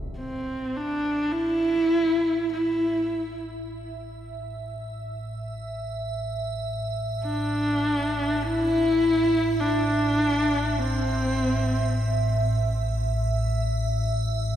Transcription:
Already playing: A1 A2 E5
0.18 C4
0.77 D4
1.33 E4
2.53 E4
7.24 D4
8.43 E4
9.60 D4
10.78 C4

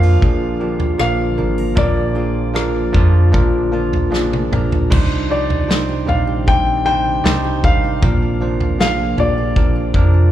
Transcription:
Already playing: F2 A#2 D3 F3 A#3 D4 F4 A#4 C5 F5
0.03 F4
0.21 A#1 F3 A#3 D4 G#4, kick, floor tom
0.60 F3 A#3 D4 G4 A#4
0.80 floor tom
0.98 A#1 F3 A#3 D4 A#4 F5, cross-stick
1.37 G#1 F3 A#3 D4 G#4 A#4
1.58 A#4
1.76 A#1 A#2 F3 A#3 D4 A#4 D5, kick, floor tom
2.14 F3 A#3 D4 F4 G#4
2.54 F3 A#3 D4 A#4, cross-stick
2.93 F2 F3 A#3 D4 F4, kick, floor tom
3.32 A#1 F3 A#3 D4 A#4, kick, floor tom
3.72 F3 A#3 D4 F4 A#4
3.93 floor tom
4.10 F3 A#3 D4 G#4, snare
4.33 high tom
4.52 A#1 F3 A#3 D4 A#4, mid tom
4.72 floor tom
4.90 C2 C3 D#3 G3 C4 D4 D#4 C5, kick, floor tom, crash
5.12 D4
5.29 G3 D#4 G4 C5 D5
5.50 D4, floor tom
5.68 G3 C4 D4 D#4 C5, snare
5.89 G4
6.06 A#1 G3 C4 D4 D#4 D5 F5, floor tom
6.27 G4
6.46 C3 G3 D4 D#4 C5 G5, kick, floor tom
6.66 D4
6.85 G3 D4 D#4 G4 C5 G5
7.05 D4
7.24 C2 G3 C4 D#4 C5 D5, snare
7.44 G4
7.63 G#1 G3 C4 D4 D#4 A#4 F5, kick, floor tom
7.84 G4
8.02 A#1 A#2 F3 A#3 D4 F4 A#4, kick, floor tom
8.22 D4
8.40 F3 A#3 D4 A#4 C5
8.60 D4, floor tom
8.79 F3 A#3 D4 G#4 F5, snare
8.99 A#4
9.17 A#1 F3 A#3 D4 G4 D5, floor tom
9.38 A#4
9.56 A#2 F3 A#3 D4 A#4, kick, floor tom
9.76 D4
9.94 F2 F3 A#3 D4 A#4, kick
10.14 D4

